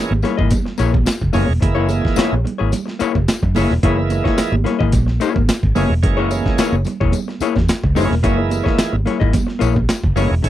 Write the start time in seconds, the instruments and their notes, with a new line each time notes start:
Already playing: tonewheel organ E3 G#3 A#3 C#4
0.10 fingered electric bass G#1, muted hollow-body jazz guitar stroke, high conga
0.22 hollow-body jazz guitar A#3 E4 G#4 C#5, snare, closed hi-hat, tambourine, muted conga, low conga
0.37 fingered electric bass G#1, hollow-body jazz guitar A#3 E4 G#4 D#5, kick
0.50 kick, closed hi-hat, tambourine, muted conga, high conga, low conga
0.65 muted hollow-body jazz guitar stroke, snare
0.78 fingered electric bass A#1, hollow-body jazz guitar A#3 E4 G#4 C#5, closed hi-hat, tambourine, muted conga
0.94 muted hollow-body jazz guitar stroke, kick, high conga
1.05 muted hollow-body jazz guitar stroke, snare, closed hi-hat, tambourine, muted conga
1.21 fingered electric bass F#1, kick
1.33 fingered electric bass F#1, tonewheel organ E3 G#3 A#3 C#4, hollow-body jazz guitar A#3 E4 G#4 C#5, open hi-hat, tambourine, muted conga, high conga, low conga
1.47 fingered electric bass E1, muted hollow-body jazz guitar stroke
1.60 fingered electric bass F#1, tonewheel organ E3 G#3 A#3 E4, muted hollow-body jazz guitar stroke, kick, closed hi-hat, muted conga
1.75 hollow-body jazz guitar A#3 E4 G#4 C#5
1.88 muted hollow-body jazz guitar stroke, closed hi-hat, tambourine, muted conga, high conga
2.02 muted hollow-body jazz guitar stroke, kick
2.07 snare
2.16 hollow-body jazz guitar A#3 E4 G#4 C#5, muted fingered electric bass stroke, snare, closed hi-hat, tambourine
2.33 fingered electric bass A#1, high conga
2.44 muted hollow-body jazz guitar stroke, closed hi-hat, muted conga, low conga
2.58 fingered electric bass G#1, hollow-body jazz guitar A#3 E4 G#4 C#5
2.71 muted hollow-body jazz guitar stroke, closed hi-hat, tambourine, high conga, low conga
2.86 muted hollow-body jazz guitar stroke, snare
2.99 hollow-body jazz guitar A#3 E4 G#4 C#5, muted fingered electric bass stroke, closed hi-hat, tambourine
3.14 fingered electric bass F#1, muted hollow-body jazz guitar stroke, kick, high conga
3.28 snare, closed hi-hat, tambourine, muted conga
3.43 fingered electric bass F#2, muted hollow-body jazz guitar stroke, kick
3.55 fingered electric bass F#1, tonewheel organ E3 G#3 A#3 E4, hollow-body jazz guitar A#3 E4 G#4 C#5, open hi-hat, tambourine, muted conga, high conga, low conga
3.70 fingered electric bass E1, muted hollow-body jazz guitar stroke, snare
3.83 fingered electric bass F#1, tonewheel organ E3 G#3 A#3 E4, hollow-body jazz guitar A#3 E4 G#4 C#5, kick, closed hi-hat, muted conga
3.98 muted hollow-body jazz guitar stroke
4.10 muted hollow-body jazz guitar stroke, closed hi-hat, tambourine, muted conga, high conga
4.24 hollow-body jazz guitar A#3 E4 G#4 C#5, kick, snare
4.37 muted hollow-body jazz guitar stroke, muted fingered electric bass stroke, snare, closed hi-hat, tambourine
4.52 fingered electric bass G#1, muted hollow-body jazz guitar stroke, high conga
4.64 hollow-body jazz guitar A#3 E4 G#4 C#5, snare, closed hi-hat, muted conga, low conga
4.79 fingered electric bass G#1, hollow-body jazz guitar A#3 E4 G#4 D#5, kick
4.92 fingered electric bass A#1, kick, closed hi-hat, tambourine, muted conga, high conga, low conga
5.06 muted hollow-body jazz guitar stroke, snare
5.20 hollow-body jazz guitar A#3 E4 G#4 C#5, closed hi-hat, tambourine, muted conga
5.34 fingered electric bass G#1, muted hollow-body jazz guitar stroke, kick, high conga
5.48 muted hollow-body jazz guitar stroke, snare, closed hi-hat, tambourine, muted conga
5.63 fingered electric bass G#1, kick
5.75 fingered electric bass F#1, tonewheel organ E3 G#3 A#3 C#4, hollow-body jazz guitar A#3 E4 G#4 C#5, open hi-hat, tambourine, muted conga, high conga, low conga
5.90 fingered electric bass E1, muted hollow-body jazz guitar stroke
6.03 fingered electric bass F#1, tonewheel organ E3 G#3 A#3 C#4, muted hollow-body jazz guitar stroke, kick, closed hi-hat
6.17 hollow-body jazz guitar A#3 E4 G#4 C#5
6.31 muted hollow-body jazz guitar stroke, closed hi-hat, tambourine, high conga
6.45 muted hollow-body jazz guitar stroke, kick, snare
6.58 hollow-body jazz guitar A#3 E4 G#4 C#5, muted fingered electric bass stroke, snare, closed hi-hat, tambourine
6.72 fingered electric bass F#1, high conga
6.85 muted hollow-body jazz guitar stroke, closed hi-hat, tambourine, muted conga, low conga
7.00 fingered electric bass E1, hollow-body jazz guitar A#3 E4 G#4 C#5, kick
7.12 closed hi-hat, tambourine, muted conga, high conga, low conga
7.28 muted hollow-body jazz guitar stroke, snare
7.40 hollow-body jazz guitar A#3 E4 G#4 C#5, muted fingered electric bass stroke, closed hi-hat, tambourine, muted conga
7.56 fingered electric bass E2, muted hollow-body jazz guitar stroke, kick, snare, high conga
7.69 snare, closed hi-hat, tambourine
7.84 fingered electric bass C#2, muted hollow-body jazz guitar stroke, kick
7.95 fingered electric bass F#1, tonewheel organ E3 G#3 A#3 C#4, hollow-body jazz guitar A#3 E4 G#4 C#5, open hi-hat, tambourine, muted conga, high conga, low conga
8.09 fingered electric bass E1, muted hollow-body jazz guitar stroke, snare
8.23 fingered electric bass F#1, tonewheel organ E3 G#3 A#3 E4, hollow-body jazz guitar A#3 E4 G#4 C#5, kick, closed hi-hat, tambourine
8.38 muted hollow-body jazz guitar stroke
8.50 muted hollow-body jazz guitar stroke, closed hi-hat, tambourine, muted conga, high conga
8.64 hollow-body jazz guitar A#3 E4 G#4 C#5, kick, snare
8.78 muted hollow-body jazz guitar stroke, muted fingered electric bass stroke, snare, closed hi-hat, tambourine
8.92 fingered electric bass G#1, muted hollow-body jazz guitar stroke, high conga
9.05 hollow-body jazz guitar A#3 E4 G#4 C#5, snare, closed hi-hat, low conga
9.20 fingered electric bass G#1, hollow-body jazz guitar A#3 E4 G#4 D#5, kick
9.33 kick, closed hi-hat, tambourine, muted conga, high conga, low conga
9.47 muted hollow-body jazz guitar stroke, snare
9.59 fingered electric bass A#1, hollow-body jazz guitar A#3 E4 G#4 C#5, closed hi-hat, tambourine
9.75 muted hollow-body jazz guitar stroke, kick, high conga
9.89 muted hollow-body jazz guitar stroke, snare, closed hi-hat, tambourine, muted conga
10.04 fingered electric bass F#1, kick
10.16 fingered electric bass F#1, tonewheel organ E3 G#3 A#3 C#4, hollow-body jazz guitar A#3 E4 G#4 C#5, open hi-hat, tambourine, high conga, low conga
10.30 fingered electric bass E1, muted hollow-body jazz guitar stroke
10.42 fingered electric bass F#1, tonewheel organ E3 G#3 A3 C#4, muted hollow-body jazz guitar stroke, kick, closed hi-hat, tambourine